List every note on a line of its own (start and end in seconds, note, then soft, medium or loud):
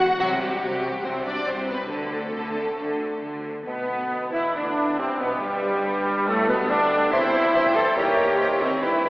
0.00 0.15 E1 medium
0.00 0.15 E2 medium
0.00 0.17 F#4 loud
0.00 0.17 F#5 loud
0.20 0.57 C2 medium
0.20 0.58 C3 medium
0.20 0.41 F#3 loud
0.20 0.41 F#3 medium
0.20 0.28 F#4 medium
0.20 0.41 F#4 loud
0.41 0.88 G3 medium
0.41 1.04 G3 medium
0.41 1.03 G4 medium
0.41 1.04 G4 medium
0.62 1.00 C2 medium
0.62 1.00 C3 medium
1.04 1.42 C2 medium
1.04 1.43 C3 medium
1.04 1.14 C4 medium
1.04 1.26 C4 medium
1.04 1.12 C5 medium
1.04 1.26 C5 medium
1.26 1.47 D4 medium
1.26 1.47 D5 medium
1.47 1.86 C2 medium
1.47 1.86 C3 medium
1.47 1.69 C4 medium
1.47 1.70 C4 medium
1.47 1.69 C5 medium
1.68 1.78 B3 medium
1.68 1.77 B3 medium
1.68 1.91 B4 medium
1.68 1.92 B4 medium
1.91 2.30 D2 medium
1.91 2.30 D3 medium
1.91 3.21 A3 medium
1.91 3.23 A4 medium
1.91 3.21 A4 medium
2.35 2.74 D2 medium
2.35 2.74 D3 medium
2.79 3.18 D2 medium
2.79 3.18 D3 medium
3.23 3.62 D2 medium
3.23 3.62 D3 medium
3.67 4.29 B1 soft
3.67 4.29 B2 medium
3.67 4.35 B2 medium
3.67 4.29 B3 medium
3.67 4.29 B3 soft
3.67 4.29 B3 medium
3.67 4.30 B3 soft
3.67 4.29 B4 soft
3.67 4.35 B4 soft
4.32 4.55 E2 soft
4.32 4.54 E3 medium
4.32 4.57 E3 medium
4.32 4.55 E4 soft
4.32 4.55 E4 medium
4.32 4.55 E4 soft
4.32 4.55 E4 medium
4.32 4.55 E4 soft
4.32 4.55 E4 medium
4.32 4.42 E4 medium
4.32 4.54 E5 soft
4.54 4.99 D2 soft
4.54 4.99 D3 soft
4.54 4.98 D4 soft
4.54 4.99 D4 soft
4.54 4.99 D4 medium
4.54 4.99 D4 soft
4.54 4.99 D4 medium
4.54 4.98 D4 soft
4.54 4.96 B4 soft
4.54 5.01 D5 soft
4.99 5.07 C2 medium
4.99 5.22 C3 medium
4.99 5.21 C3 medium
4.99 5.20 C4 soft
4.99 5.20 C4 medium
4.99 5.07 C4 medium
4.99 5.20 C4 soft
4.99 5.21 C4 medium
4.99 5.83 G4 soft
4.99 5.20 C5 medium
5.20 5.41 B1 medium
5.20 5.42 B2 soft
5.20 5.43 B2 medium
5.20 5.42 B3 soft
5.20 5.41 B3 medium
5.20 5.42 B3 medium
5.20 5.30 B3 medium
5.20 5.42 B3 medium
5.20 5.26 B4 medium
5.20 5.30 B4 medium
5.40 6.26 G1 medium
5.40 6.25 G2 medium
5.40 6.30 G2 medium
5.40 6.26 G3 medium
5.40 6.28 G3 medium
5.40 6.26 G3 medium
5.40 6.26 G4 medium
5.40 6.30 G4 medium
5.84 6.30 B4 medium
6.27 6.48 A1 medium
6.27 6.49 A2 medium
6.27 6.48 A2 medium
6.27 6.49 A3 medium
6.27 6.36 A3 medium
6.27 6.48 A3 medium
6.27 6.49 A4 medium
6.27 6.72 A4 medium
6.27 6.50 A4 medium
6.48 6.70 B1 medium
6.48 6.58 B2 medium
6.48 6.70 B2 medium
6.48 6.69 B3 medium
6.48 6.70 B3 medium
6.48 6.71 B3 medium
6.48 6.70 B4 medium
6.48 6.72 B4 medium
6.70 7.13 D2 medium
6.70 7.12 D3 medium
6.70 7.13 D3 medium
6.70 7.13 D4 medium
6.70 6.93 D4 medium
6.70 7.12 D4 medium
6.70 7.13 D4 medium
6.70 7.12 D4 medium
6.70 7.13 D4 medium
6.70 7.12 G4 medium
6.70 7.13 D5 medium
7.12 7.50 E2 medium
7.12 7.22 E3 medium
7.12 7.52 G3 medium
7.12 7.93 C4 medium
7.12 7.74 E4 medium
7.12 7.76 E4 medium
7.12 7.23 G4 medium
7.12 7.19 C5 medium
7.12 7.93 C5 medium
7.12 7.95 C5 medium
7.12 7.78 E5 medium
7.12 7.23 E5 soft
7.12 7.23 C6 medium
7.23 7.35 C5 soft
7.23 7.34 G5 medium
7.23 7.35 G5 medium
7.33 7.43 E3 medium
7.33 7.45 G4 soft
7.33 7.40 C5 medium
7.33 7.45 E5 soft
7.33 7.44 C6 soft
7.44 7.55 C5 soft
7.44 7.55 G5 medium
7.54 7.92 E2 medium
7.54 7.64 E3 soft
7.54 7.97 E3 medium
7.54 7.65 G4 medium
7.54 7.61 C5 medium
7.54 7.65 E5 medium
7.54 7.64 C6 medium
7.65 7.76 C5 medium
7.65 7.75 G5 soft
7.65 7.76 G5 soft
7.75 7.85 E3 medium
7.75 7.87 G4 medium
7.75 7.97 A4 medium
7.75 7.96 A4 medium
7.75 7.82 C5 medium
7.75 7.86 E5 soft
7.75 7.96 A5 medium
7.75 7.86 C6 medium
7.86 7.97 C5 medium
7.86 7.97 G5 medium
7.86 7.97 G5 soft
7.97 8.34 D#2 medium
7.97 8.06 D#3 medium
7.97 8.82 D#3 medium
7.97 8.84 A#3 medium
7.97 8.60 G4 medium
7.97 8.61 G4 medium
7.97 8.60 G4 medium
7.97 8.07 G4 soft
7.97 8.40 A#4 medium
7.97 8.03 C#5 medium
7.97 8.82 C#5 medium
7.97 8.07 C#5 soft
7.97 8.60 G5 medium
7.97 8.07 A#5 soft
8.07 8.18 A#4 medium
8.07 8.18 D#5 medium
8.07 8.18 G5 soft
8.18 8.28 D#3 medium
8.18 8.29 G4 medium
8.18 8.29 C#5 medium
8.18 8.24 C#5 soft
8.18 8.29 A#5 soft
8.29 8.40 A#4 soft
8.29 8.40 D#5 soft
8.29 8.40 G5 medium
8.39 8.78 D#2 medium
8.39 8.49 D#3 soft
8.39 8.49 G4 soft
8.39 8.82 C5 medium
8.39 8.49 C#5 soft
8.39 8.46 C#5 medium
8.39 8.50 A#5 medium
8.50 8.61 A#4 soft
8.50 8.61 D#5 soft
8.50 8.61 G5 soft
8.61 8.71 D#3 soft
8.61 8.83 C4 medium
8.61 8.72 G4 soft
8.61 8.71 C5 medium
8.61 8.67 C#5 soft
8.61 8.72 C#5 soft
8.61 8.72 A#5 soft
8.72 8.83 A#4 soft
8.72 8.83 D#5 soft
8.72 8.83 G5 soft
8.82 9.09 D2 medium
8.82 9.09 D3 medium
8.82 8.93 G3 soft
8.82 9.09 G3 medium
8.82 9.09 E4 medium
8.82 8.93 G4 soft
8.82 9.09 B4 medium
8.82 8.90 B4 soft
8.82 8.94 D5 soft
8.82 9.09 E5 medium
8.82 8.93 B5 soft
8.93 9.05 B4 soft
8.93 9.05 G5 soft
9.04 9.09 G3 soft
9.04 9.09 G4 soft
9.04 9.09 B4 soft
9.04 9.09 D5 soft
9.04 9.09 B5 soft